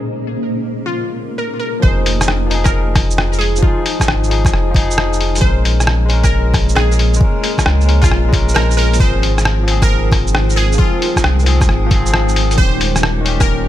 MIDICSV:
0, 0, Header, 1, 7, 480
1, 0, Start_track
1, 0, Key_signature, -4, "minor"
1, 0, Tempo, 447761
1, 47, Time_signature, 4, 2, 24, 8
1, 14667, End_track
2, 0, Start_track
2, 0, Title_t, "Synth pluck"
2, 0, Program_c, 0, 84
2, 921, Note_on_c, 0, 65, 87
2, 1172, Note_off_c, 0, 65, 0
2, 1481, Note_on_c, 0, 70, 88
2, 1698, Note_off_c, 0, 70, 0
2, 1711, Note_on_c, 0, 70, 88
2, 1955, Note_on_c, 0, 72, 91
2, 1959, Note_off_c, 0, 70, 0
2, 2217, Note_off_c, 0, 72, 0
2, 2833, Note_on_c, 0, 70, 92
2, 3088, Note_off_c, 0, 70, 0
2, 3630, Note_on_c, 0, 68, 90
2, 3863, Note_off_c, 0, 68, 0
2, 3885, Note_on_c, 0, 65, 93
2, 4366, Note_off_c, 0, 65, 0
2, 5797, Note_on_c, 0, 72, 93
2, 6058, Note_off_c, 0, 72, 0
2, 6684, Note_on_c, 0, 70, 93
2, 6934, Note_off_c, 0, 70, 0
2, 7241, Note_on_c, 0, 68, 95
2, 7644, Note_off_c, 0, 68, 0
2, 8594, Note_on_c, 0, 65, 96
2, 8849, Note_off_c, 0, 65, 0
2, 9160, Note_on_c, 0, 70, 89
2, 9388, Note_off_c, 0, 70, 0
2, 9402, Note_on_c, 0, 70, 92
2, 9651, Note_on_c, 0, 72, 92
2, 9709, Note_off_c, 0, 70, 0
2, 9905, Note_off_c, 0, 72, 0
2, 10529, Note_on_c, 0, 70, 95
2, 10776, Note_off_c, 0, 70, 0
2, 11322, Note_on_c, 0, 68, 89
2, 11549, Note_off_c, 0, 68, 0
2, 11557, Note_on_c, 0, 65, 94
2, 12042, Note_off_c, 0, 65, 0
2, 13481, Note_on_c, 0, 72, 93
2, 13741, Note_off_c, 0, 72, 0
2, 14367, Note_on_c, 0, 70, 94
2, 14615, Note_off_c, 0, 70, 0
2, 14667, End_track
3, 0, Start_track
3, 0, Title_t, "Synth texture"
3, 0, Program_c, 1, 99
3, 0, Note_on_c, 1, 63, 77
3, 0, Note_on_c, 1, 75, 78
3, 1981, Note_off_c, 1, 75, 0
3, 1984, Note_off_c, 1, 63, 0
3, 14667, End_track
4, 0, Start_track
4, 0, Title_t, "Ambient pad"
4, 0, Program_c, 2, 92
4, 0, Note_on_c, 2, 46, 83
4, 0, Note_on_c, 2, 58, 76
4, 0, Note_on_c, 2, 61, 72
4, 0, Note_on_c, 2, 68, 87
4, 43, Note_on_c, 2, 70, 87
4, 1920, Note_off_c, 2, 46, 0
4, 1920, Note_off_c, 2, 68, 0
4, 1923, Note_off_c, 2, 61, 0
4, 1924, Note_off_c, 2, 58, 0
4, 1946, Note_off_c, 2, 70, 0
4, 1963, Note_on_c, 2, 63, 85
4, 1966, Note_on_c, 2, 65, 78
4, 1967, Note_on_c, 2, 68, 93
4, 5767, Note_off_c, 2, 63, 0
4, 5805, Note_on_c, 2, 58, 88
4, 5809, Note_on_c, 2, 72, 79
4, 5810, Note_on_c, 2, 73, 97
4, 9604, Note_off_c, 2, 68, 0
4, 9608, Note_off_c, 2, 58, 0
4, 9610, Note_off_c, 2, 73, 0
4, 9648, Note_on_c, 2, 70, 78
4, 9651, Note_on_c, 2, 56, 84
4, 9653, Note_on_c, 2, 63, 80
4, 13444, Note_off_c, 2, 65, 0
4, 13445, Note_off_c, 2, 72, 0
4, 13450, Note_off_c, 2, 70, 0
4, 13451, Note_off_c, 2, 56, 0
4, 13484, Note_on_c, 2, 61, 90
4, 13488, Note_on_c, 2, 67, 95
4, 14667, Note_off_c, 2, 61, 0
4, 14667, Note_off_c, 2, 63, 0
4, 14667, Note_off_c, 2, 67, 0
4, 14667, End_track
5, 0, Start_track
5, 0, Title_t, "Tine electric piano"
5, 0, Program_c, 3, 4
5, 0, Control_c, 3, 64, 127
5, 0, Note_on_c, 3, 56, 70
5, 0, Note_on_c, 3, 61, 62
5, 0, Note_on_c, 3, 70, 77
5, 1924, Note_off_c, 3, 56, 0
5, 1927, Note_on_c, 3, 53, 90
5, 1946, Note_off_c, 3, 61, 0
5, 1968, Note_off_c, 3, 70, 0
5, 1968, Note_on_c, 3, 63, 84
5, 1979, Control_c, 3, 64, 0
5, 2013, Note_on_c, 3, 68, 97
5, 2180, Control_c, 3, 64, 127
5, 2627, Note_off_c, 3, 53, 0
5, 2640, Note_on_c, 3, 53, 95
5, 2669, Note_off_c, 3, 63, 0
5, 2684, Note_on_c, 3, 63, 84
5, 2691, Note_off_c, 3, 68, 0
5, 2728, Note_on_c, 3, 68, 103
5, 3833, Note_off_c, 3, 53, 0
5, 3846, Note_on_c, 3, 53, 92
5, 3867, Note_off_c, 3, 63, 0
5, 3889, Note_off_c, 3, 68, 0
5, 3889, Note_on_c, 3, 63, 82
5, 3933, Note_on_c, 3, 68, 103
5, 4567, Note_off_c, 3, 53, 0
5, 4583, Note_on_c, 3, 53, 83
5, 4589, Note_off_c, 3, 63, 0
5, 4606, Note_on_c, 3, 63, 74
5, 4611, Note_off_c, 3, 68, 0
5, 4625, Note_on_c, 3, 68, 89
5, 5035, Note_off_c, 3, 53, 0
5, 5048, Note_on_c, 3, 53, 100
5, 5068, Note_off_c, 3, 63, 0
5, 5077, Note_off_c, 3, 68, 0
5, 5090, Note_on_c, 3, 63, 93
5, 5133, Note_on_c, 3, 68, 109
5, 5763, Note_on_c, 3, 56, 92
5, 5769, Note_off_c, 3, 53, 0
5, 5790, Note_off_c, 3, 63, 0
5, 5809, Note_on_c, 3, 61, 81
5, 5811, Note_off_c, 3, 68, 0
5, 5822, Control_c, 3, 64, 0
5, 5846, Note_on_c, 3, 70, 99
5, 6017, Control_c, 3, 64, 127
5, 6476, Note_off_c, 3, 56, 0
5, 6489, Note_on_c, 3, 56, 93
5, 6509, Note_off_c, 3, 61, 0
5, 6528, Note_off_c, 3, 70, 0
5, 6528, Note_on_c, 3, 61, 86
5, 6574, Note_on_c, 3, 70, 100
5, 7667, Note_off_c, 3, 56, 0
5, 7680, Note_on_c, 3, 56, 95
5, 7709, Note_off_c, 3, 61, 0
5, 7720, Note_on_c, 3, 61, 85
5, 7732, Note_off_c, 3, 70, 0
5, 7764, Note_on_c, 3, 70, 99
5, 8404, Note_off_c, 3, 56, 0
5, 8423, Note_on_c, 3, 56, 81
5, 8425, Note_off_c, 3, 61, 0
5, 8445, Note_on_c, 3, 61, 72
5, 8447, Note_off_c, 3, 70, 0
5, 8462, Note_on_c, 3, 70, 92
5, 8871, Note_off_c, 3, 56, 0
5, 8884, Note_on_c, 3, 56, 99
5, 8907, Note_off_c, 3, 61, 0
5, 8915, Note_off_c, 3, 70, 0
5, 8927, Note_on_c, 3, 61, 90
5, 8970, Note_on_c, 3, 70, 108
5, 9603, Note_on_c, 3, 53, 89
5, 9607, Note_off_c, 3, 56, 0
5, 9628, Note_off_c, 3, 61, 0
5, 9643, Note_on_c, 3, 60, 82
5, 9650, Note_off_c, 3, 70, 0
5, 9663, Control_c, 3, 64, 0
5, 9687, Note_on_c, 3, 68, 99
5, 9868, Control_c, 3, 64, 127
5, 10314, Note_off_c, 3, 53, 0
5, 10327, Note_on_c, 3, 53, 93
5, 10346, Note_off_c, 3, 60, 0
5, 10368, Note_off_c, 3, 68, 0
5, 10368, Note_on_c, 3, 60, 84
5, 10409, Note_on_c, 3, 68, 104
5, 11507, Note_off_c, 3, 53, 0
5, 11520, Note_on_c, 3, 53, 94
5, 11548, Note_off_c, 3, 60, 0
5, 11561, Note_on_c, 3, 60, 85
5, 11569, Note_off_c, 3, 68, 0
5, 11605, Note_on_c, 3, 68, 102
5, 12245, Note_off_c, 3, 53, 0
5, 12265, Note_off_c, 3, 60, 0
5, 12265, Note_on_c, 3, 53, 83
5, 12287, Note_off_c, 3, 68, 0
5, 12287, Note_on_c, 3, 60, 73
5, 12308, Note_on_c, 3, 68, 92
5, 12705, Note_off_c, 3, 53, 0
5, 12718, Note_on_c, 3, 53, 101
5, 12748, Note_off_c, 3, 60, 0
5, 12759, Note_off_c, 3, 68, 0
5, 12763, Note_on_c, 3, 60, 92
5, 12804, Note_on_c, 3, 68, 111
5, 13440, Note_on_c, 3, 51, 91
5, 13444, Note_off_c, 3, 53, 0
5, 13466, Note_off_c, 3, 60, 0
5, 13480, Note_on_c, 3, 61, 82
5, 13487, Note_off_c, 3, 68, 0
5, 13500, Control_c, 3, 64, 0
5, 13527, Note_on_c, 3, 67, 103
5, 13698, Control_c, 3, 64, 127
5, 14142, Note_off_c, 3, 51, 0
5, 14154, Note_on_c, 3, 51, 95
5, 14184, Note_off_c, 3, 61, 0
5, 14198, Note_on_c, 3, 61, 89
5, 14208, Note_off_c, 3, 67, 0
5, 14241, Note_on_c, 3, 67, 101
5, 14667, Note_off_c, 3, 51, 0
5, 14667, Note_off_c, 3, 61, 0
5, 14667, Note_off_c, 3, 67, 0
5, 14667, End_track
6, 0, Start_track
6, 0, Title_t, "Sub bass"
6, 0, Program_c, 4, 38
6, 1967, Note_on_c, 4, 29, 98
6, 3877, Note_off_c, 4, 29, 0
6, 4368, Note_on_c, 4, 32, 102
6, 4837, Note_off_c, 4, 32, 0
6, 4852, Note_on_c, 4, 29, 98
6, 5077, Note_off_c, 4, 29, 0
6, 5088, Note_on_c, 4, 29, 82
6, 5797, Note_off_c, 4, 29, 0
6, 5810, Note_on_c, 4, 34, 102
6, 7719, Note_off_c, 4, 34, 0
6, 8215, Note_on_c, 4, 37, 102
6, 8681, Note_off_c, 4, 37, 0
6, 8696, Note_on_c, 4, 34, 96
6, 8919, Note_off_c, 4, 34, 0
6, 8928, Note_on_c, 4, 34, 82
6, 9638, Note_off_c, 4, 34, 0
6, 9645, Note_on_c, 4, 32, 101
6, 11556, Note_off_c, 4, 32, 0
6, 12053, Note_on_c, 4, 36, 106
6, 12520, Note_off_c, 4, 36, 0
6, 12534, Note_on_c, 4, 32, 98
6, 12758, Note_off_c, 4, 32, 0
6, 12765, Note_on_c, 4, 32, 84
6, 13476, Note_off_c, 4, 32, 0
6, 13487, Note_on_c, 4, 27, 100
6, 14667, Note_off_c, 4, 27, 0
6, 14667, End_track
7, 0, Start_track
7, 0, Title_t, "Drums"
7, 1964, Note_on_c, 9, 36, 126
7, 2072, Note_off_c, 9, 36, 0
7, 2210, Note_on_c, 9, 46, 75
7, 2317, Note_off_c, 9, 46, 0
7, 2369, Note_on_c, 9, 37, 63
7, 2369, Note_on_c, 9, 82, 57
7, 2445, Note_off_c, 9, 37, 0
7, 2445, Note_on_c, 9, 37, 106
7, 2476, Note_off_c, 9, 82, 0
7, 2553, Note_off_c, 9, 37, 0
7, 2691, Note_on_c, 9, 46, 71
7, 2798, Note_off_c, 9, 46, 0
7, 2846, Note_on_c, 9, 37, 55
7, 2846, Note_on_c, 9, 82, 57
7, 2847, Note_on_c, 9, 36, 111
7, 2954, Note_off_c, 9, 36, 0
7, 2954, Note_off_c, 9, 37, 0
7, 2954, Note_off_c, 9, 82, 0
7, 3167, Note_on_c, 9, 36, 104
7, 3168, Note_on_c, 9, 37, 55
7, 3168, Note_on_c, 9, 46, 75
7, 3274, Note_off_c, 9, 36, 0
7, 3275, Note_off_c, 9, 37, 0
7, 3275, Note_off_c, 9, 46, 0
7, 3330, Note_on_c, 9, 82, 58
7, 3412, Note_on_c, 9, 37, 103
7, 3437, Note_off_c, 9, 82, 0
7, 3519, Note_off_c, 9, 37, 0
7, 3570, Note_on_c, 9, 82, 46
7, 3655, Note_on_c, 9, 46, 74
7, 3677, Note_off_c, 9, 82, 0
7, 3762, Note_off_c, 9, 46, 0
7, 3814, Note_on_c, 9, 82, 56
7, 3887, Note_on_c, 9, 36, 126
7, 3922, Note_off_c, 9, 82, 0
7, 3994, Note_off_c, 9, 36, 0
7, 4135, Note_on_c, 9, 46, 74
7, 4242, Note_off_c, 9, 46, 0
7, 4286, Note_on_c, 9, 36, 64
7, 4299, Note_on_c, 9, 37, 61
7, 4299, Note_on_c, 9, 82, 59
7, 4377, Note_off_c, 9, 37, 0
7, 4377, Note_on_c, 9, 37, 113
7, 4393, Note_off_c, 9, 36, 0
7, 4406, Note_off_c, 9, 82, 0
7, 4484, Note_off_c, 9, 37, 0
7, 4541, Note_on_c, 9, 82, 34
7, 4623, Note_on_c, 9, 46, 69
7, 4648, Note_off_c, 9, 82, 0
7, 4730, Note_off_c, 9, 46, 0
7, 4767, Note_on_c, 9, 36, 114
7, 4780, Note_on_c, 9, 37, 53
7, 4780, Note_on_c, 9, 82, 57
7, 4861, Note_off_c, 9, 37, 0
7, 4861, Note_on_c, 9, 37, 61
7, 4874, Note_off_c, 9, 36, 0
7, 4887, Note_off_c, 9, 82, 0
7, 4969, Note_off_c, 9, 37, 0
7, 5087, Note_on_c, 9, 36, 109
7, 5102, Note_on_c, 9, 46, 73
7, 5194, Note_off_c, 9, 36, 0
7, 5210, Note_off_c, 9, 46, 0
7, 5261, Note_on_c, 9, 82, 60
7, 5337, Note_on_c, 9, 37, 111
7, 5368, Note_off_c, 9, 82, 0
7, 5444, Note_off_c, 9, 37, 0
7, 5500, Note_on_c, 9, 82, 47
7, 5581, Note_on_c, 9, 46, 71
7, 5607, Note_off_c, 9, 82, 0
7, 5688, Note_off_c, 9, 46, 0
7, 5740, Note_on_c, 9, 46, 41
7, 5740, Note_on_c, 9, 82, 57
7, 5806, Note_on_c, 9, 36, 127
7, 5847, Note_off_c, 9, 46, 0
7, 5847, Note_off_c, 9, 82, 0
7, 5913, Note_off_c, 9, 36, 0
7, 6060, Note_on_c, 9, 46, 73
7, 6167, Note_off_c, 9, 46, 0
7, 6221, Note_on_c, 9, 37, 60
7, 6221, Note_on_c, 9, 82, 57
7, 6295, Note_off_c, 9, 37, 0
7, 6295, Note_on_c, 9, 37, 111
7, 6328, Note_off_c, 9, 82, 0
7, 6402, Note_off_c, 9, 37, 0
7, 6536, Note_on_c, 9, 46, 72
7, 6643, Note_off_c, 9, 46, 0
7, 6687, Note_on_c, 9, 36, 114
7, 6693, Note_on_c, 9, 37, 50
7, 6693, Note_on_c, 9, 82, 58
7, 6795, Note_off_c, 9, 36, 0
7, 6800, Note_off_c, 9, 37, 0
7, 6800, Note_off_c, 9, 82, 0
7, 7007, Note_on_c, 9, 36, 109
7, 7013, Note_on_c, 9, 37, 51
7, 7013, Note_on_c, 9, 46, 70
7, 7114, Note_off_c, 9, 36, 0
7, 7120, Note_off_c, 9, 37, 0
7, 7120, Note_off_c, 9, 46, 0
7, 7172, Note_on_c, 9, 82, 58
7, 7252, Note_on_c, 9, 37, 112
7, 7280, Note_off_c, 9, 82, 0
7, 7359, Note_off_c, 9, 37, 0
7, 7414, Note_on_c, 9, 82, 46
7, 7496, Note_on_c, 9, 46, 72
7, 7521, Note_off_c, 9, 82, 0
7, 7604, Note_off_c, 9, 46, 0
7, 7651, Note_on_c, 9, 82, 56
7, 7726, Note_on_c, 9, 36, 127
7, 7758, Note_off_c, 9, 82, 0
7, 7833, Note_off_c, 9, 36, 0
7, 7972, Note_on_c, 9, 46, 73
7, 8079, Note_off_c, 9, 46, 0
7, 8126, Note_on_c, 9, 36, 66
7, 8134, Note_on_c, 9, 37, 59
7, 8134, Note_on_c, 9, 82, 54
7, 8210, Note_off_c, 9, 37, 0
7, 8210, Note_on_c, 9, 37, 112
7, 8233, Note_off_c, 9, 36, 0
7, 8241, Note_off_c, 9, 82, 0
7, 8317, Note_off_c, 9, 37, 0
7, 8372, Note_on_c, 9, 82, 31
7, 8455, Note_on_c, 9, 46, 69
7, 8479, Note_off_c, 9, 82, 0
7, 8562, Note_off_c, 9, 46, 0
7, 8606, Note_on_c, 9, 36, 112
7, 8616, Note_on_c, 9, 37, 49
7, 8616, Note_on_c, 9, 82, 54
7, 8699, Note_off_c, 9, 37, 0
7, 8699, Note_on_c, 9, 37, 64
7, 8713, Note_off_c, 9, 36, 0
7, 8724, Note_off_c, 9, 82, 0
7, 8806, Note_off_c, 9, 37, 0
7, 8926, Note_on_c, 9, 36, 109
7, 8935, Note_on_c, 9, 46, 71
7, 9033, Note_off_c, 9, 36, 0
7, 9043, Note_off_c, 9, 46, 0
7, 9097, Note_on_c, 9, 82, 54
7, 9176, Note_on_c, 9, 37, 113
7, 9204, Note_off_c, 9, 82, 0
7, 9283, Note_off_c, 9, 37, 0
7, 9335, Note_on_c, 9, 82, 46
7, 9418, Note_on_c, 9, 46, 71
7, 9443, Note_off_c, 9, 82, 0
7, 9525, Note_off_c, 9, 46, 0
7, 9578, Note_on_c, 9, 46, 42
7, 9578, Note_on_c, 9, 82, 55
7, 9645, Note_on_c, 9, 36, 123
7, 9685, Note_off_c, 9, 46, 0
7, 9685, Note_off_c, 9, 82, 0
7, 9752, Note_off_c, 9, 36, 0
7, 9896, Note_on_c, 9, 46, 77
7, 10004, Note_off_c, 9, 46, 0
7, 10056, Note_on_c, 9, 37, 61
7, 10056, Note_on_c, 9, 82, 52
7, 10134, Note_off_c, 9, 37, 0
7, 10134, Note_on_c, 9, 37, 111
7, 10164, Note_off_c, 9, 82, 0
7, 10242, Note_off_c, 9, 37, 0
7, 10374, Note_on_c, 9, 46, 75
7, 10482, Note_off_c, 9, 46, 0
7, 10526, Note_on_c, 9, 36, 109
7, 10533, Note_on_c, 9, 37, 51
7, 10533, Note_on_c, 9, 82, 54
7, 10633, Note_off_c, 9, 36, 0
7, 10640, Note_off_c, 9, 37, 0
7, 10640, Note_off_c, 9, 82, 0
7, 10845, Note_on_c, 9, 36, 107
7, 10853, Note_on_c, 9, 37, 50
7, 10853, Note_on_c, 9, 46, 74
7, 10952, Note_off_c, 9, 36, 0
7, 10961, Note_off_c, 9, 37, 0
7, 10961, Note_off_c, 9, 46, 0
7, 11012, Note_on_c, 9, 82, 53
7, 11091, Note_on_c, 9, 37, 106
7, 11120, Note_off_c, 9, 82, 0
7, 11198, Note_off_c, 9, 37, 0
7, 11253, Note_on_c, 9, 82, 44
7, 11334, Note_on_c, 9, 46, 77
7, 11360, Note_off_c, 9, 82, 0
7, 11441, Note_off_c, 9, 46, 0
7, 11495, Note_on_c, 9, 82, 54
7, 11566, Note_on_c, 9, 36, 116
7, 11602, Note_off_c, 9, 82, 0
7, 11673, Note_off_c, 9, 36, 0
7, 11814, Note_on_c, 9, 46, 80
7, 11921, Note_off_c, 9, 46, 0
7, 11966, Note_on_c, 9, 36, 60
7, 11974, Note_on_c, 9, 37, 60
7, 11974, Note_on_c, 9, 82, 54
7, 12050, Note_off_c, 9, 37, 0
7, 12050, Note_on_c, 9, 37, 105
7, 12073, Note_off_c, 9, 36, 0
7, 12081, Note_off_c, 9, 82, 0
7, 12157, Note_off_c, 9, 37, 0
7, 12212, Note_on_c, 9, 82, 30
7, 12289, Note_on_c, 9, 46, 78
7, 12319, Note_off_c, 9, 82, 0
7, 12396, Note_off_c, 9, 46, 0
7, 12445, Note_on_c, 9, 36, 105
7, 12451, Note_on_c, 9, 37, 50
7, 12451, Note_on_c, 9, 82, 53
7, 12530, Note_off_c, 9, 37, 0
7, 12530, Note_on_c, 9, 37, 62
7, 12553, Note_off_c, 9, 36, 0
7, 12558, Note_off_c, 9, 82, 0
7, 12638, Note_off_c, 9, 37, 0
7, 12766, Note_on_c, 9, 36, 104
7, 12768, Note_on_c, 9, 46, 79
7, 12873, Note_off_c, 9, 36, 0
7, 12875, Note_off_c, 9, 46, 0
7, 12928, Note_on_c, 9, 82, 54
7, 13009, Note_on_c, 9, 37, 102
7, 13035, Note_off_c, 9, 82, 0
7, 13117, Note_off_c, 9, 37, 0
7, 13170, Note_on_c, 9, 82, 44
7, 13253, Note_on_c, 9, 46, 78
7, 13277, Note_off_c, 9, 82, 0
7, 13360, Note_off_c, 9, 46, 0
7, 13412, Note_on_c, 9, 46, 43
7, 13412, Note_on_c, 9, 82, 51
7, 13487, Note_on_c, 9, 36, 120
7, 13519, Note_off_c, 9, 46, 0
7, 13519, Note_off_c, 9, 82, 0
7, 13594, Note_off_c, 9, 36, 0
7, 13730, Note_on_c, 9, 46, 79
7, 13837, Note_off_c, 9, 46, 0
7, 13890, Note_on_c, 9, 37, 64
7, 13890, Note_on_c, 9, 82, 56
7, 13971, Note_off_c, 9, 37, 0
7, 13971, Note_on_c, 9, 37, 105
7, 13998, Note_off_c, 9, 82, 0
7, 14078, Note_off_c, 9, 37, 0
7, 14212, Note_on_c, 9, 46, 81
7, 14319, Note_off_c, 9, 46, 0
7, 14369, Note_on_c, 9, 36, 105
7, 14373, Note_on_c, 9, 37, 55
7, 14373, Note_on_c, 9, 82, 55
7, 14476, Note_off_c, 9, 36, 0
7, 14480, Note_off_c, 9, 37, 0
7, 14480, Note_off_c, 9, 82, 0
7, 14667, End_track
0, 0, End_of_file